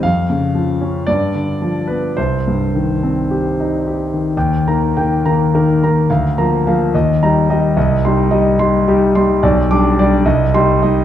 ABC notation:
X:1
M:2/4
L:1/16
Q:1/4=71
K:Cm
V:1 name="Grand piano"
f4 d3 =B | c4 z4 | [K:Eb] (3g2 b2 g2 (3b2 B2 b2 | (3f2 b2 f2 (3e2 b2 e2 |
(3e2 c'2 e2 (3c'2 G2 c'2 | (3d2 d'2 d2 (3e2 c'2 e2 |]
V:2 name="Grand piano" clef=bass
F,, _D, F, _D G,, =D, F, =B, | C,, G,, E, C G E G E, | [K:Eb] (3E,,2 [E,B,]2 [E,B,]2 (3[E,B,]2 [E,B,]2 [E,B,]2 | (3D,,2 [F,B,]2 [F,B,]2 (3E,,2 [G,E]2 [G,E]2 |
(3C,,2 [G,E]2 [G,E]2 (3[G,E]2 [G,E]2 [G,E]2 | (3=B,,,2 [G,D]2 [G,D]2 (3C,,2 [G,E]2 [G,E]2 |]